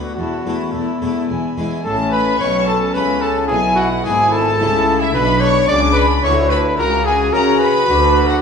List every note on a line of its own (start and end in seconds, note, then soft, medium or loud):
0.00 0.15 D2 soft
0.00 0.11 B3 soft
0.00 0.18 B3 soft
0.00 0.11 D4 soft
0.00 0.14 F#4 medium
0.00 0.18 F#5 soft
0.00 0.17 B5 soft
0.15 0.26 E1 soft
0.15 0.25 E2 medium
0.15 0.44 E2 soft
0.15 0.74 F#4 medium
0.15 0.45 A5 soft
0.15 0.45 B5 soft
0.19 0.46 E4 soft
0.46 0.54 E1 soft
0.46 0.54 E2 soft
0.46 0.71 E2 soft
0.46 0.87 A3 soft
0.46 0.87 B3 soft
0.46 0.74 E4 soft
0.46 0.87 E4 soft
0.46 0.73 A5 soft
0.46 0.73 B5 soft
0.72 0.82 E1 soft
0.72 0.81 E2 soft
0.72 1.00 E2 soft
0.72 1.57 E4 medium
0.72 1.02 E4 soft
0.72 1.01 A5 soft
0.72 1.02 B5 soft
1.02 1.10 E1 soft
1.02 1.10 E2 soft
1.02 1.27 E2 soft
1.02 1.22 A3 soft
1.02 1.22 B3 soft
1.02 1.22 E4 soft
1.02 1.30 E4 soft
1.02 1.29 A5 soft
1.02 1.28 B5 soft
1.29 1.38 E1 soft
1.29 1.37 E2 soft
1.29 1.55 E2 soft
1.29 1.58 E4 soft
1.29 1.57 G#5 soft
1.29 1.56 B5 soft
1.57 1.66 E1 soft
1.57 1.65 E2 soft
1.57 1.83 E2 soft
1.57 1.78 G#3 soft
1.57 1.78 B3 soft
1.57 1.85 E4 soft
1.57 1.78 E4 soft
1.57 1.85 G#5 medium
1.57 1.85 B5 medium
1.83 2.37 A1 medium
1.83 2.37 A2 medium
1.83 2.37 C#4 medium
1.83 1.96 A4 medium
1.83 2.11 A5 loud
1.83 2.11 A5 medium
2.11 2.38 B4 medium
2.11 2.41 B5 loud
2.11 2.40 B5 medium
2.39 2.94 B1 medium
2.39 2.92 B2 medium
2.39 2.95 B2 medium
2.39 2.80 C#4 soft
2.39 3.49 C#4 medium
2.39 2.80 E4 medium
2.39 2.67 C#5 medium
2.39 2.67 C#6 loud
2.39 2.69 C#6 medium
2.67 2.95 A4 medium
2.67 2.95 A5 loud
2.67 2.76 A5 medium
2.94 3.49 C#2 medium
2.94 3.46 C#3 medium
2.94 3.50 C#3 medium
2.94 3.35 C#4 medium
2.94 3.35 E4 medium
2.94 3.23 B4 medium
2.94 3.23 B5 loud
2.94 3.23 B5 medium
3.21 3.47 A4 medium
3.21 3.30 A5 loud
3.21 3.51 A5 medium
3.47 4.05 B1 medium
3.47 4.01 B2 medium
3.47 4.05 B2 medium
3.47 3.60 G#4 medium
3.47 3.77 G#5 loud
3.51 4.05 E4 medium
3.51 3.78 G#5 medium
3.76 3.89 F#4 medium
3.76 4.05 F#5 loud
3.76 4.06 F#5 medium
4.04 4.59 G#1 medium
4.04 4.56 G#2 medium
4.04 4.60 G#2 medium
4.04 4.45 B3 soft
4.04 4.45 D4 soft
4.04 4.59 E4 medium
4.04 4.45 E4 medium
4.04 4.33 G#4 medium
4.04 4.32 G#5 loud
4.04 4.34 G#5 medium
4.32 5.02 A4 medium
4.32 5.00 A5 loud
4.32 5.02 A5 loud
4.61 5.15 C#2 medium
4.61 5.11 C#3 medium
4.61 5.16 C#3 medium
4.61 5.11 A3 medium
4.61 5.12 C#4 medium
4.61 5.14 E4 medium
4.61 5.12 E4 medium
5.01 5.13 E4 medium
5.01 5.15 E5 medium
5.01 5.15 E5 loud
5.14 5.69 B1 medium
5.14 5.66 B2 medium
5.14 5.69 B2 medium
5.14 5.69 D4 medium
5.14 5.42 B4 loud
5.14 5.42 B5 loud
5.40 5.67 C#5 loud
5.40 5.69 C#6 medium
5.40 5.70 C#6 loud
5.68 6.23 C#2 medium
5.68 6.21 C#3 medium
5.68 6.24 C#3 medium
5.68 6.24 D4 medium
5.68 6.10 D4 medium
5.68 6.10 F#4 medium
5.68 5.81 D5 loud
5.68 5.96 D6 loud
5.68 5.97 D6 loud
5.93 6.06 B4 loud
5.93 6.24 B5 loud
5.98 6.25 B5 loud
6.23 6.78 D2 medium
6.23 6.75 D3 medium
6.23 6.78 D3 medium
6.23 6.64 D4 medium
6.23 6.79 E4 medium
6.23 6.65 F#4 medium
6.23 6.51 C#5 loud
6.23 6.32 C#6 loud
6.23 6.33 C#6 medium
6.50 6.77 B4 loud
6.50 6.58 B5 loud
6.50 6.59 B5 loud
6.78 7.33 C#2 medium
6.78 7.29 C#3 medium
6.78 7.33 C#3 medium
6.78 7.33 F#4 medium
6.78 7.06 A#4 loud
6.78 7.05 A#5 loud
7.05 7.34 G#4 loud
7.05 7.33 G#5 loud
7.05 7.15 G#5 medium
7.33 7.87 C#3 medium
7.33 7.87 C#4 medium
7.33 7.84 C#4 medium
7.33 7.73 E4 medium
7.33 7.87 F#4 medium
7.33 7.74 F#4 medium
7.33 7.59 A#4 medium
7.33 7.60 A#5 loud
7.33 7.61 A#5 loud
7.59 8.29 B4 loud
7.59 8.29 B5 loud
7.59 8.28 B5 loud
7.88 8.41 D2 medium
7.88 8.39 D3 medium
7.88 8.42 D3 medium
7.88 8.39 D4 medium
7.88 8.41 F#4 medium
7.88 8.39 F#4 medium
8.27 8.41 F#4 medium
8.27 8.42 F#5 medium
8.27 8.35 F#5 medium